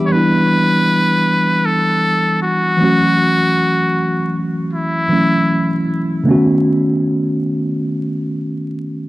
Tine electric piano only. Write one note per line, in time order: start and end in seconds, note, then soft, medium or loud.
0.00 0.08 E3 medium
0.00 0.10 G3 medium
0.00 0.11 B3 medium
0.00 0.12 D4 medium
0.00 0.15 G4 medium
0.08 2.75 E3 medium
0.08 2.75 G3 medium
0.08 2.76 B3 medium
0.14 2.77 D4 medium
0.14 2.78 E4 medium
2.77 5.05 E3 medium
2.77 5.06 F#3 medium
2.77 5.07 A3 medium
2.82 5.08 C#4 soft
2.82 5.09 F#4 medium
5.09 6.25 E3 soft
5.09 6.26 F#3 soft
5.09 6.24 A3 soft
5.09 6.27 C#4 soft
5.09 6.27 E4 soft
6.24 6.32 C#3 medium
6.24 9.09 A3 medium
6.24 9.09 B3 medium
6.29 9.09 D#3 medium
6.29 9.09 C#4 medium
6.29 9.09 F#4 medium